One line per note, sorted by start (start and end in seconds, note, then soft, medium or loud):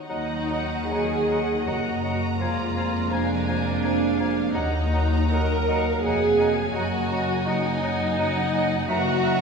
0.07 1.63 D#2 soft
0.07 1.64 D#3 soft
0.07 0.25 F#3 soft
0.07 2.37 F#3 soft
0.07 4.52 A#3 soft
0.07 0.87 D#4 medium
0.07 0.26 D#5 soft
0.07 1.62 F#5 soft
0.07 0.87 F#5 soft
0.07 0.25 F#5 soft
0.07 0.87 A#5 soft
0.07 0.19 A#5 soft
0.50 0.66 F#3 soft
0.50 0.67 D#5 soft
0.50 0.69 F#5 soft
0.50 0.60 A#5 soft
0.90 1.07 F#3 soft
0.90 1.67 G#4 medium
0.90 2.39 D#5 soft
0.90 1.08 D#5 soft
0.90 1.09 F#5 soft
0.90 1.29 G#5 soft
0.90 1.00 A#5 soft
1.29 1.45 F#3 soft
1.29 1.46 D#5 soft
1.29 1.66 F#5 soft
1.29 1.48 F#5 soft
1.29 1.40 A#5 soft
1.66 2.40 F#1 soft
1.66 2.41 F#2 soft
1.66 1.82 F#3 soft
1.66 2.40 F#4 soft
1.66 1.84 D#5 soft
1.66 1.83 F#5 soft
1.66 2.03 F#5 soft
1.66 3.12 A#5 soft
1.66 1.76 A#5 soft
2.03 2.19 F#3 soft
2.03 2.20 D#5 soft
2.03 2.19 F#5 soft
2.03 3.80 A#5 soft
2.03 2.14 A#5 soft
2.39 4.55 F1 soft
2.39 4.56 F2 soft
2.39 2.56 F3 soft
2.39 4.51 G#3 soft
2.39 3.10 F4 medium
2.39 2.75 D5 soft
2.39 2.55 F5 soft
2.39 2.57 G#5 soft
2.39 2.49 A#5 soft
2.75 2.92 F3 soft
2.75 3.11 D5 soft
2.75 2.91 F5 soft
2.75 2.93 G#5 soft
2.75 2.84 A#5 soft
3.10 3.26 F3 soft
3.10 4.55 D4 medium
3.10 3.28 F5 soft
3.10 3.47 F5 soft
3.10 3.84 G#5 soft
3.10 3.29 G#5 soft
3.10 3.20 A#5 soft
3.47 3.64 F3 soft
3.47 3.63 F5 soft
3.47 3.84 F5 soft
3.47 3.63 G#5 soft
3.47 3.57 A#5 soft
3.82 4.01 F3 soft
3.82 3.98 F5 soft
3.82 4.55 F5 soft
3.82 3.99 G#5 soft
3.82 4.20 G#5 soft
3.82 3.93 A#5 soft
4.17 4.36 F3 soft
4.17 4.33 F5 soft
4.17 4.55 F5 soft
4.17 4.36 G#5 soft
4.17 4.28 A#5 soft
4.54 6.04 D#2 medium
4.54 6.04 D#2 soft
4.54 4.71 F#3 soft
4.54 8.74 F#3 soft
4.54 8.74 A#3 soft
4.54 5.33 D#4 medium
4.54 4.70 D#5 soft
4.54 4.71 F#5 soft
4.54 4.92 F#5 soft
4.54 4.63 A#5 soft
4.54 6.04 A#5 soft
4.93 5.09 F#3 soft
4.93 5.09 D#5 soft
4.93 6.02 F#5 soft
4.93 5.09 F#5 soft
4.93 5.02 A#5 soft
5.32 5.49 F#3 soft
5.32 6.04 A#4 medium
5.32 5.48 D#5 soft
5.32 5.69 D#5 soft
5.32 5.49 F#5 soft
5.32 5.41 A#5 soft
5.68 5.85 F#3 soft
5.68 5.84 D#5 soft
5.68 6.04 F5 soft
5.68 5.86 F#5 soft
5.68 5.77 A#5 soft
6.04 6.73 F1 soft
6.04 6.73 F2 soft
6.04 6.20 F#3 soft
6.04 6.73 G#4 medium
6.04 6.21 D#5 soft
6.04 6.75 F5 soft
6.04 6.40 F#5 soft
6.04 6.21 F#5 soft
6.04 8.14 G#5 medium
6.04 6.14 A#5 soft
6.38 6.56 F#3 soft
6.38 6.54 D#5 soft
6.38 6.56 F#5 soft
6.38 6.75 G#5 soft
6.38 6.49 A#5 soft
6.72 8.86 F#1 medium
6.72 8.86 F#2 soft
6.72 6.91 F#3 soft
6.72 7.46 F#4 medium
6.72 6.88 D#5 soft
6.72 7.10 D#5 soft
6.72 6.92 F#5 soft
6.72 7.46 A#5 soft
6.72 6.84 A#5 soft
7.10 7.28 F#3 soft
7.10 7.26 D#5 soft
7.10 7.47 D#5 medium
7.10 7.29 F#5 soft
7.10 7.19 A#5 soft
7.46 7.65 F#3 soft
7.46 8.89 D#4 medium
7.46 7.62 D#5 soft
7.46 8.19 F#5 medium
7.46 7.65 F#5 soft
7.46 7.83 A#5 soft
7.46 7.56 A#5 soft
7.82 8.00 F#3 soft
7.82 7.98 D#5 soft
7.82 7.99 F#5 soft
7.82 8.90 G#5 medium
7.82 7.92 A#5 medium
8.16 8.35 F#3 medium
8.16 8.32 D#5 soft
8.16 8.35 F#5 soft
8.16 8.90 F#5 medium
8.16 8.27 A#5 soft
8.20 8.89 F#5 medium
8.52 8.70 F#3 soft
8.52 8.68 D#5 medium
8.52 8.71 F#5 soft
8.52 8.62 A#5 soft
8.88 9.41 F#1 medium
8.88 9.41 F#2 medium
8.88 9.15 E3 medium
8.88 9.05 F#3 medium
8.88 9.15 A#3 medium
8.88 9.41 F#4 medium
8.88 9.41 D#5 medium
8.88 9.04 E5 medium
8.88 9.06 F#5 soft
8.88 9.41 F#5 medium
8.88 8.98 A#5 medium
8.88 9.41 A#5 medium
9.23 9.40 F#3 soft
9.23 9.39 E5 medium
9.23 9.41 F#5 soft
9.23 9.34 A#5 soft